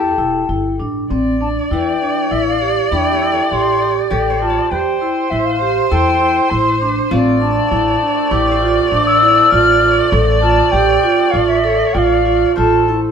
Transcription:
Already playing: E2 E4 G4 A4 A5
0.18 E1 E4
0.49 G1 E4
0.80 A1 D4
1.10 A1 C4 D5
1.41 D4 A5
1.71 E2 E3 E4 G5
2.02 D4
2.31 A1 E4 E5
2.47 F5
2.61 G4
2.92 E2 D4 E4 G5
3.12 G4
3.22 E4
3.32 A4
3.51 A1 G4 C6
3.82 G4
4.11 A1 G4 A4
4.30 C5
4.41 F4 A5
4.50 D5
4.71 E2 G4 C5 G5
5.01 E4
5.30 A1 E4 E5
5.45 F5
5.61 G4
5.90 E2 E4 A4 G5
6.10 C5
6.21 E4
6.50 A1 E4 C6
6.81 D4
7.11 A1 D3 F3 A3 C4 F4 D5
7.41 D4 A5
7.71 A1 E4
8.02 D4
8.31 A1 E4 G4 D6
8.52 C5
8.62 F4
8.92 A1 D4 D6
9.07 E6
9.22 E4
9.51 A1 F4 F6
9.82 F4
10.12 A1 A4
10.41 F4 A5
10.72 A1 G4 G5
11.03 F4
11.31 A1 F4 F5
11.47 E5
11.64 A4
11.94 A1 F4 G5
11.98 F5
12.25 F4
12.56 A1 F4 A4 C5 A5
12.88 E4

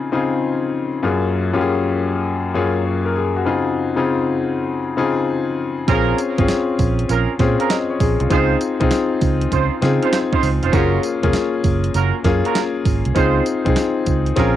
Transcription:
Already playing: C#3 C4 D#4 F4 G#4
0.12 C#3 C4 D#4 F4 G#4
1.03 F#2 A#3 C#4 F4 G#4
1.53 F#2 A#3 C#4 F4 G4
1.61 G#4
2.54 F#2 A#3 C#4 F4 G#4
2.85 C#5
3.06 A#4
3.16 G#4
3.36 F#4
3.45 C#3 C4 D#4 F4 G#4
3.96 C#3 C4 D#4 F4 G#4
4.97 C#3 C4 D#4 F4 G#4
5.88 A#1 C4 C#4 F4 G#4 A#4, kick, closed hi-hat, tambourine
6.18 closed hi-hat, tambourine
6.38 G#1 C4 C#4 F4 G#4, kick, closed hi-hat
6.48 snare, clap, closed hi-hat, tambourine
6.79 A#1, kick, open hi-hat, tambourine
6.99 closed hi-hat
7.09 A#1 C#4 F4 G#4 A#4, closed hi-hat, tambourine
7.39 A#2 C4 C#4 F4 G#4, kick, snare, closed hi-hat
7.59 C#4 F4 G#4 A#4, closed hi-hat
7.70 D#5, snare, clap, closed hi-hat, tambourine
7.90 C#5
8.00 A#1 G#4, kick, open hi-hat, tambourine
8.20 C2 F4, closed hi-hat
8.30 C#2 C4 C#4 D#4 F4 G#4 C5, kick, closed hi-hat, tambourine
8.61 closed hi-hat, tambourine
8.80 C2 C4 D#4 F4 G#4, kick, closed hi-hat
8.91 snare, clap, closed hi-hat, tambourine
9.21 C#2, kick, open hi-hat, tambourine
9.41 closed hi-hat
9.52 C#2 C#4 D#4 F4 C5, kick, closed hi-hat, tambourine
9.82 C#3 C4 D#4 F4 G#4, snare, closed hi-hat
10.02 C#4 D#4 F4 C5, closed hi-hat
10.13 snare, clap, closed hi-hat, tambourine
10.32 C#4 D#4 F4 C5, kick
10.43 C#2, open hi-hat, tambourine
10.62 F1 C#4 D#4 F4 C5, closed hi-hat
10.73 F#1 A#3 C#4 F4 F#4 G#4 A#4, kick, closed hi-hat, tambourine
11.03 closed hi-hat, tambourine
11.23 F1 A#3 C#4 F4 G#4, kick, closed hi-hat
11.33 snare, clap, closed hi-hat, tambourine
11.64 F#1, kick, open hi-hat, tambourine
11.84 closed hi-hat
11.94 F#1 C#4 F4 F#4 A#4, closed hi-hat, tambourine
12.24 F#2 A#3 C#4 F4 G#4, kick, snare, closed hi-hat
12.44 C#4 F4 F#4 A#4, closed hi-hat
12.55 snare, clap, closed hi-hat, tambourine
12.85 G#1, kick, open hi-hat, tambourine
13.05 C2, closed hi-hat
13.15 C#2 C4 C#4 D#4 F4 G#4 C5, kick, closed hi-hat, tambourine
13.46 closed hi-hat, tambourine
13.65 C2 C4 D#4 F4 G#4, kick, closed hi-hat
13.76 snare, clap, closed hi-hat, tambourine
14.06 C#2, kick, closed hi-hat, tambourine
14.26 closed hi-hat
14.36 A#1 C4 C#4 F4 G#4 A#4, kick, snare, closed hi-hat

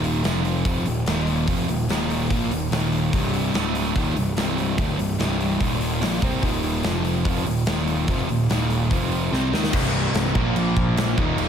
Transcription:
Already playing: D#1 D#2 A#2 D#3
0.04 open hi-hat
0.24 F1 F2 C3 F3, snare, open hi-hat
0.45 open hi-hat
0.65 F1 F2 C3 F3, kick, open hi-hat
0.85 D#1 D#2 A#2, open hi-hat
1.06 D#1 D#2 A#2 D#3, snare, open hi-hat
1.27 open hi-hat
1.48 F1 F2 C3 F3, kick, open hi-hat
1.68 D#1 D#2 A#2, open hi-hat
1.89 D#1 D#2 A#2 D#3, snare, open hi-hat
2.10 open hi-hat
2.30 A#1 A#2 F3 A#3, kick, open hi-hat
2.50 D#1 D#2 A#2, open hi-hat
2.71 D#1 D#2 A#2 D#3, snare, open hi-hat
2.92 open hi-hat
3.13 C1 C2 G2 C3, kick, open hi-hat
3.34 open hi-hat
3.54 D1 D2 A2 D3, snare, open hi-hat
3.75 open hi-hat
3.96 D#1 D#2 A#2 D#3, kick, open hi-hat
4.16 C1 C2 G2, open hi-hat
4.36 C1 C2 G2 C3, snare, open hi-hat
4.58 open hi-hat
4.78 D1 D2 A2 D3, kick, open hi-hat
4.98 C1 C2 G2, open hi-hat
5.19 C1 C2 G2 C3, snare, open hi-hat
5.41 open hi-hat
5.60 D#1 D#2 A#2 D#3, kick, open hi-hat
5.81 open hi-hat
6.02 A#1 A#2 F3 A#3, snare, open hi-hat
6.22 C2 C3 G3 C4, kick, open hi-hat
6.42 D#1 D#2 A#2 D#3, kick, open hi-hat
6.63 open hi-hat
6.83 F1 F2 C3 F3, snare, open hi-hat
7.04 open hi-hat
7.25 F1 F2 C3 F3, kick, open hi-hat
7.46 D#1 D#2 A#2, open hi-hat
7.66 D#1 D#2 A#2 D#3, snare, open hi-hat
7.88 open hi-hat
8.08 F1 F2 C3 F3, kick, open hi-hat
8.29 D#1 D#2 A#2, open hi-hat
8.50 D#1 D#2 A#2 D#3, snare, open hi-hat
8.70 open hi-hat
8.91 F1 F2 C3 F3, kick, open hi-hat
9.12 open hi-hat
9.32 C2 C3 G3 C4, snare
9.52 D#2 D#3 A#3 D#4, snare
9.64 snare
9.72 C1 C2 G2 C3, kick, crash
10.14 C1, snare, crash
10.35 A#1 A#2 F3 A#3, kick
10.56 A#1, crash
10.76 A#1, kick
10.97 A#1 A#2 F3 A#3, snare, crash
11.17 D#1 D#2 A#2 D#3, kick
11.38 D#1, crash

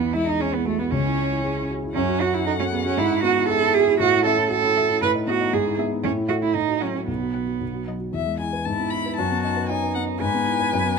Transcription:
Already playing: E2 B3
0.01 E4
0.13 G#3 E4
0.27 D#4 E4
0.39 C#4 G#4
0.53 B3 E4
0.66 A3 F#4
0.79 B3 E4
0.91 C#2 C#4
1.05 E4
1.18 C#4
1.32 E4
1.44 G#4
1.57 E4
1.70 F#4
1.83 E4
1.94 F#2 C#4 F#5
2.08 F#4
2.21 C#4 F#4
2.33 E4 F#4
2.46 D#4 A4
2.59 C#4 F#4
2.72 B3 G#4
2.85 C#4 F#4
2.98 G#2 E4
3.11 E4
3.23 B3 F#4
3.37 E4
3.49 G#4 A4 E5
3.62 E4
3.74 F#4 G#4
3.88 E4
4.00 A2 F#4
4.12 E4
4.24 C#4 A4 E5
4.37 E4
4.50 F#4 A4
4.64 E4
4.77 F#4 E5
4.89 E4
5.02 A2 B4
5.15 D#4
5.27 B3 F#4 D#5
5.40 D#4
5.53 G#2 G#4
5.66 E4
5.78 B3 E5
5.91 E4
6.03 A2 C#4
6.16 E4
6.29 A3 F#4 E5
6.42 E4
6.55 A2 D#4
6.68 F#4
6.80 F#3 C#4 F#5
6.95 F#4
7.07 B1 B3
7.21 F#4
7.34 F#3 F#5
7.47 F#4
7.61 B1
7.74 F#4
7.87 F#3 D#5
8.00 F#4
8.12 E2 E5
8.26 G#3
8.39 E4 G#5
8.53 B4
8.65 G#2 E4 A5
8.79 B3
8.90 E4 B5
9.06 B4
9.16 F#2 F#4 A5
9.31 B3
9.43 D#4 A5
9.56 B4
9.69 D#4 C#5 G#5
9.83 B4
9.95 B3 F#5
10.09 D#4
10.20 G#2 B4 G#5
10.34 B3
10.46 E4
10.60 B4
10.73 F#2
10.85 B3

